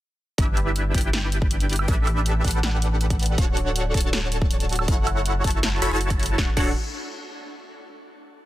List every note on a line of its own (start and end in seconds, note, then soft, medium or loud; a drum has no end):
0.38 0.93 G1 loud
0.38 0.92 D4 loud
0.38 0.92 E4 medium
0.38 0.92 G4 medium
0.38 0.92 B4 medium
0.38 0.92 E5 loud
0.38 kick loud
0.38 closed hi-hat medium
0.57 closed hi-hat medium
0.76 closed hi-hat medium
0.94 1.87 G1 medium
0.94 1.86 D4 medium
0.94 1.86 E4 medium
0.94 1.86 G4 medium
0.94 1.86 B4 medium
0.94 1.86 G5 medium
0.94 kick medium
0.94 closed hi-hat medium
0.98 closed hi-hat medium
1.01 closed hi-hat medium
1.13 snare loud
1.13 closed hi-hat medium
1.32 closed hi-hat medium
1.42 kick loud
1.51 closed hi-hat medium
1.60 closed hi-hat medium
1.69 closed hi-hat medium
1.69 open hi-hat medium
1.76 closed hi-hat medium
1.76 high woodblock medium
1.88 2.43 A1 loud
1.88 2.42 D4 loud
1.88 2.42 G4 medium
1.88 2.42 A4 medium
1.88 2.42 B4 medium
1.88 2.42 E5 loud
1.88 kick loud
1.88 closed hi-hat medium
2.07 closed hi-hat medium
2.07 high woodblock medium
2.26 closed hi-hat medium
2.44 3.37 A1 medium
2.44 3.36 D4 medium
2.44 3.36 G4 medium
2.44 3.36 A4 medium
2.44 3.36 B4 medium
2.44 3.36 F#5 medium
2.44 kick medium
2.44 closed hi-hat medium
2.48 closed hi-hat medium
2.51 closed hi-hat medium
2.63 snare loud
2.63 closed hi-hat medium
2.82 closed hi-hat medium
3.01 closed hi-hat medium
3.10 kick medium
3.10 closed hi-hat medium
3.19 closed hi-hat medium
3.19 open hi-hat medium
3.26 closed hi-hat medium
3.38 3.93 D1 loud
3.38 3.92 D4 loud
3.38 3.92 F#4 medium
3.38 3.92 A4 medium
3.38 3.92 C#5 medium
3.38 3.92 F#5 loud
3.38 kick loud
3.38 closed hi-hat medium
3.57 closed hi-hat medium
3.76 closed hi-hat medium
3.94 4.86 D1 loud
3.94 4.86 D4 medium
3.94 4.86 F#4 medium
3.94 4.86 A4 medium
3.94 4.86 C#5 medium
3.94 4.86 A5 medium
3.94 kick medium
3.94 closed hi-hat medium
3.97 closed hi-hat medium
4.01 closed hi-hat medium
4.13 snare loud
4.13 closed hi-hat medium
4.32 closed hi-hat medium
4.42 kick loud
4.51 closed hi-hat medium
4.60 closed hi-hat medium
4.69 closed hi-hat medium
4.69 open hi-hat medium
4.76 closed hi-hat medium
4.76 high woodblock medium
4.88 5.43 F#1 loud
4.88 5.42 E4 loud
4.88 5.42 F#4 medium
4.88 5.42 A4 loud
4.88 5.42 C#5 medium
4.88 5.42 F#5 loud
4.88 kick loud
4.88 closed hi-hat medium
5.07 closed hi-hat medium
5.07 high woodblock medium
5.26 closed hi-hat medium
5.44 5.80 F#1 loud
5.44 5.80 E4 medium
5.44 5.80 F#4 medium
5.44 5.80 A4 medium
5.44 5.80 C#5 medium
5.44 5.80 A5 medium
5.44 kick medium
5.44 closed hi-hat medium
5.47 closed hi-hat medium
5.50 closed hi-hat medium
5.63 snare loud
5.63 closed hi-hat medium
5.82 5.90 F#1 loud
5.82 5.89 E4 medium
5.82 5.89 F#4 medium
5.82 5.89 A4 medium
5.82 5.89 C#5 medium
5.82 5.89 B5 medium
5.82 closed hi-hat medium
5.91 6.36 F#1 medium
5.91 6.36 E4 loud
5.91 6.36 F#4 medium
5.91 6.36 A4 loud
5.91 6.36 C#5 medium
5.91 6.36 A5 loud
6.01 closed hi-hat medium
6.10 kick medium
6.10 closed hi-hat medium
6.20 closed hi-hat medium
6.20 open hi-hat medium
6.26 closed hi-hat medium
6.38 6.49 D1 loud
6.38 6.49 D4 medium
6.38 6.49 F#4 medium
6.38 6.49 A4 medium
6.38 6.49 C#5 medium
6.38 6.49 F#5 medium
6.38 kick loud
6.38 snare medium
6.57 6.74 D1 loud
6.57 6.71 D4 medium
6.57 6.71 F#4 medium
6.57 6.71 A4 medium
6.57 6.71 C#5 medium
6.57 6.71 F#5 medium
6.57 kick loud
6.57 crash medium